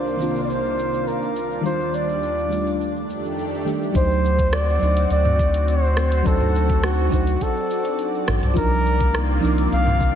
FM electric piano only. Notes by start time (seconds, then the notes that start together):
Already playing: D#3 A#3 C4 D4 F4
0.17 D#3 A#3 C4
0.21 D4 F4
1.61 D#3 G3 D4
1.67 F4
2.48 D#3 G3 A3
2.52 D4 F4
3.65 D#3 G3 A3 D4 G4
3.92 F#3 D4 D#4
3.98 C5
4.79 F#3 D4 D#4
4.84 C5
6.23 F#3 D4 D#4
6.28 C5
7.09 F#3 D4 D#4
7.15 C5
8.54 F3 D4 D#4
8.59 A#4
9.40 F3 D4 D#4
9.46 A#4